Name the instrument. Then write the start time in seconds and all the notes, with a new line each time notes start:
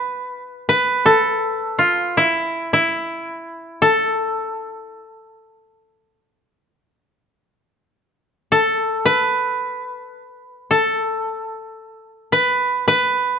koto
Already playing: F4 B4
0.69 B4
1.06 A4
1.79 F4
2.17 E4
2.73 E4
3.82 A4
8.52 A4
9.05 B4
10.71 A4
12.32 B4
12.88 B4